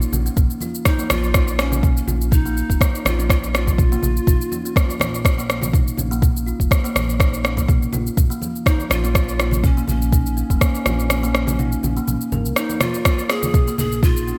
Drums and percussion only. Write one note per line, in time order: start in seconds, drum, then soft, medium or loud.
0.02 shaker medium
0.13 low conga medium
0.13 shaker medium
0.26 shaker medium
0.36 kick loud
0.36 mid tom medium
0.36 high conga medium
0.36 shaker medium
0.50 shaker medium
0.61 high conga medium
0.61 shaker medium
0.75 shaker medium
0.85 kick loud
0.85 cross-stick medium
0.85 shaker medium
0.98 high conga medium
0.98 shaker medium
1.10 cross-stick loud
1.10 high conga loud
1.10 shaker medium
1.24 shaker medium
1.34 kick loud
1.34 cross-stick medium
1.34 high conga medium
1.34 shaker loud
1.48 shaker medium
1.59 cross-stick medium
1.59 shaker medium
1.72 high conga loud
1.72 low conga medium
1.72 shaker medium
1.83 kick loud
1.83 mid tom medium
1.83 shaker medium
1.97 shaker medium
2.08 low conga loud
2.08 shaker medium
2.21 shaker medium
2.32 kick loud
2.32 mid tom medium
2.32 shaker medium
2.46 shaker medium
2.57 shaker medium
2.70 kick medium
2.70 high conga medium
2.70 shaker medium
2.81 kick loud
2.81 cross-stick medium
2.81 shaker loud
2.95 shaker medium
3.05 cross-stick medium
3.05 high conga loud
3.05 shaker medium
3.20 shaker medium
3.30 kick loud
3.30 cross-stick medium
3.30 high conga medium
3.30 shaker medium
3.44 shaker medium
3.55 cross-stick medium
3.55 shaker medium
3.67 kick medium
3.67 high conga loud
3.67 low conga medium
3.67 shaker medium
3.78 kick loud
3.78 mid tom medium
3.78 shaker medium
3.92 shaker medium
4.02 low conga medium
4.02 shaker medium
4.17 shaker medium
4.27 kick loud
4.27 mid tom medium
4.27 high conga medium
4.27 shaker medium
4.41 shaker medium
4.52 high conga medium
4.52 shaker medium
4.66 shaker medium
4.76 kick loud
4.76 cross-stick medium
4.76 shaker medium
4.89 high conga medium
4.89 shaker medium
5.00 cross-stick medium
5.00 high conga loud
5.00 shaker medium
5.14 shaker medium
5.24 kick loud
5.24 cross-stick medium
5.24 high conga medium
5.24 shaker medium
5.39 shaker medium
5.50 cross-stick medium
5.50 shaker medium
5.62 high conga loud
5.62 low conga medium
5.62 shaker medium
5.73 kick loud
5.73 mid tom medium
5.73 shaker medium
5.88 shaker medium
5.97 low conga medium
5.97 shaker medium
6.12 shaker medium
6.22 kick loud
6.22 mid tom medium
6.22 shaker medium
6.36 shaker medium
6.47 shaker medium
6.60 kick medium
6.60 high conga medium
6.60 shaker medium
6.71 kick loud
6.71 cross-stick medium
6.71 shaker medium
6.85 shaker medium
6.96 cross-stick medium
6.96 high conga loud
6.96 shaker medium
7.10 shaker medium
7.20 kick loud
7.20 cross-stick medium
7.20 high conga medium
7.20 shaker medium
7.34 shaker medium
7.45 cross-stick medium
7.45 shaker medium
7.57 kick medium
7.57 high conga medium
7.57 low conga medium
7.57 shaker medium
7.69 kick loud
7.69 mid tom medium
7.69 shaker soft
7.82 shaker soft
7.93 low conga medium
7.93 shaker medium
8.07 shaker soft
8.17 kick loud
8.17 mid tom medium
8.17 high conga medium
8.17 shaker medium
8.31 shaker soft
8.42 high conga medium
8.42 shaker medium
8.56 shaker soft
8.66 kick loud
8.66 cross-stick medium
8.66 shaker medium
8.79 high conga medium
8.79 shaker soft
8.90 cross-stick medium
8.90 high conga medium
8.90 shaker medium
9.04 shaker soft
9.14 kick loud
9.14 cross-stick medium
9.14 high conga medium
9.14 shaker medium
9.29 shaker soft
9.40 cross-stick medium
9.40 shaker medium
9.51 high conga medium
9.51 low conga medium
9.51 shaker medium
9.64 kick loud
9.64 mid tom loud
9.64 shaker soft
9.78 shaker soft
9.88 low conga medium
9.88 shaker medium
10.02 shaker soft
10.12 kick loud
10.12 mid tom medium
10.12 shaker medium
10.26 shaker soft
10.37 shaker soft
10.50 kick medium
10.50 high conga medium
10.50 shaker soft
10.61 kick loud
10.61 cross-stick medium
10.61 shaker medium
10.75 shaker soft
10.86 cross-stick medium
10.86 high conga medium
10.86 shaker medium
10.99 shaker soft
11.10 cross-stick medium
11.10 high conga medium
11.10 shaker medium
11.24 shaker soft
11.35 cross-stick medium
11.35 shaker medium
11.47 high conga medium
11.47 low conga medium
11.47 shaker medium
11.59 mid tom medium
11.59 shaker medium
11.72 shaker soft
11.84 low conga medium
11.84 shaker medium
11.97 shaker medium
12.08 mid tom medium
12.08 high conga medium
12.08 shaker medium
12.21 shaker soft
12.32 high conga medium
12.32 low conga medium
12.32 shaker medium
12.46 shaker soft
12.56 cross-stick medium
12.56 shaker medium
12.69 high conga medium
12.69 shaker medium
12.80 cross-stick medium
12.80 mid tom medium
12.80 high conga medium
12.80 shaker medium
12.94 shaker medium
13.05 kick loud
13.05 cross-stick loud
13.05 high conga medium
13.05 shaker medium
13.19 shaker medium
13.30 cross-stick medium
13.30 shaker medium
13.43 high conga medium
13.43 low conga medium
13.43 shaker medium
13.54 kick loud
13.54 mid tom medium
13.54 shaker medium
13.68 shaker medium
13.78 low conga loud
13.78 shaker medium
13.92 shaker medium
14.03 kick loud
14.03 mid tom medium
14.03 shaker medium
14.17 shaker medium
14.28 shaker medium